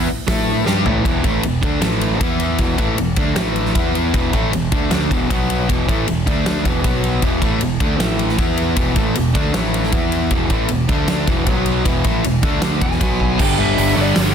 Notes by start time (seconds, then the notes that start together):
0.08 muted picked electric bass stroke, muted overdriven electric guitar stroke
0.28 A2 A3 E4 A4, kick, snare, open hi-hat
0.37 snare
0.66 G2 G3 D4 G4, snare
0.85 A1 A2 E3 A3, floor tom
1.04 E1 E2 B2 E3, kick, ride
1.24 A1 A2 E3 A3, kick, ride
1.43 E1 E2 B2, ride
1.63 D2 D3 A3 D4, kick, ride
1.82 A1 A2 E3 A3, snare, ride
2.01 ride
2.21 E2 E3 B3 E4, kick, ride
2.40 ride
2.58 E1 E2 B2 E3, kick, ride
2.78 A1 A2 E3 A3, kick, ride
2.98 E1 E2 B2, ride
3.16 D2 D3 A3 D4, kick, ride
3.36 A1 A2 E3 A3, snare, ride
3.56 ride
3.66 snare
3.75 E2 E3 B3 E4, kick, ride
3.95 ride
4.14 E1 E2 B2 E3, kick, ride
4.33 A1 A2 E3 A3, kick, ride
4.53 E1 E2 B2, ride
4.72 D2 D3 A3 D4, kick, ride
4.91 D2 D3 A3 D4, snare, ride
5.11 E1 E2 B2 E3, kick, ride
5.30 B1 B2 F#3 B3, kick, ride
5.50 ride
5.69 E1 E2 B2 E3, kick, ride
5.89 A1 A2 E3 A3, kick, ride
6.07 E1 E2 B2, ride
6.26 D2 D3 A3 D4, kick, ride
6.46 D2 D3 A3 D4, snare, ride
6.65 E1 E2 B2 E3, kick, ride
6.84 B1 B2 F#3 B3, kick, ride
7.04 ride
7.22 E1 E2 B2 E3, kick, ride
7.42 A1 A2 E3 A3, kick, ride
7.61 E1 E2 B2, ride
7.80 D2 D3 A3 D4, kick, ride
8.00 A1 A2 E3 A3, snare, ride
8.19 ride
8.29 snare
8.38 E2 E3 B3 E4, kick, ride
8.57 ride
8.76 E1 E2 B2 E3, kick, ride
8.96 A1 A2 E3 A3, kick, ride
9.15 E1 E2 B2, ride
9.35 D2 D3 A3 D4, kick, ride
9.54 A1 A2 E3 A3, snare, ride
9.74 ride
9.83 snare
9.92 E2 E3 B3 E4, kick, ride
10.12 ride
10.31 E1 E2 B2 E3, kick, ride
10.50 A1 A2 E3 A3, kick, ride
10.68 E1 E2 B2, ride
10.89 D2 D3 A3 D4, kick, ride
11.08 D2 D3 A3 D4, snare, ride
11.27 E1 E2 B2 E3, kick, ride
11.46 B1 B2 F#3 B3, kick, ride
11.66 ride
11.85 E1 E2 B2 E3, kick, ride
12.04 A1 A2 E3 A3, kick, ride
12.24 E1 E2 B2, ride
12.43 D2 D3 A3 D4, kick, ride
12.62 D2 D3 A3 D4, snare, ride
12.81 E1 E2 B2 E3 G#5, kick, ride
12.91 snare
13.01 B1 B2 F#3 B3, kick, ride
13.20 kick
13.39 G1 G2 D3 G3 B3 D4 G5, kick, crash
13.59 G1 E5
13.78 G1 G2 D3 G3, open hi-hat
13.94 G1 G2 D3 G3 B3 D4 C#5
14.01 D5
14.16 G1 G2 D3 G3, snare, open hi-hat
14.21 C#5